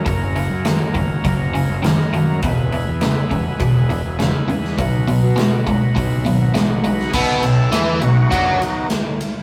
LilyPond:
<<
  \new Staff \with { instrumentName = "Tonewheel organ" } { \time 4/4 \key b \major \tempo 4 = 102 <ais cis' fis' ais'>1 | <b e' gis' b'>1 | <b dis' fis' b'>1 | <gis' a'>4. fis'8 d'8 <dis b>8 r4 | }
  \new Staff \with { instrumentName = "Tonewheel organ" } { \time 4/4 \key b \major r1 | r1 | r1 | r4. <fis b dis'>4. r4 | }
  \new Staff \with { instrumentName = "Overdriven electric guitar" } { \clef bass \time 4/4 \key b \major <fis, cis>8 <fis, cis>8 <fis, dis>8 <fis, dis>8 <fis, cis>8 <fis, cis>8 <fis, dis>8 <fis, dis>8 | <e, b,>8 <e, b,>8 <e, cis>8 <e, cis>8 <e, b,>8 <e, b,>8 <e, cis>8 <e, cis>8 | <b, fis>8 <b, fis>8 <b, gis>8 <b, gis>8 <b, fis>8 <b, fis>8 <b, gis>8 <b, gis>8 | <b, b>8 b,8 <e e'>8 b,8 <fis fis'>8 r4. | }
  \new Staff \with { instrumentName = "Fingered electric bass" } { \clef bass \time 4/4 \key b \major fis,,8. fis,8 r16 fis,,16 r16 fis,,8. fis,,8 r16 fis,8 | e,,8. e,8 r16 e,,16 r16 e,,8. e,,8 r16 e,8 | b,,8. b,8 r16 b,,16 r16 b,,8 gis,,8 a,,8 b,,8 | b,,8 b,,8 e,8 b,,8 fis,8 r4. | }
  \new DrumStaff \with { instrumentName = "Drums" } \drummode { \time 4/4 <hho bd>8 hho8 <hho sn>8 <hho bd>8 <hho bd>8 hho8 <hho sn>16 sn16 hho8 | <hho bd>8 hho8 <hho sn>8 <hho bd>8 <hho bd>8 hho8 <hho sn>8 hho16 sn16 | <hho bd>8 hho8 <hho sn>8 <hho bd>8 <hho bd>8 hho8 <hho sn>8 hho16 sn16 | <cymc bd>8 cymr8 <cymr sn>8 cymr8 <bd cymr>8 cymr8 <cymr sn>8 cymr8 | }
>>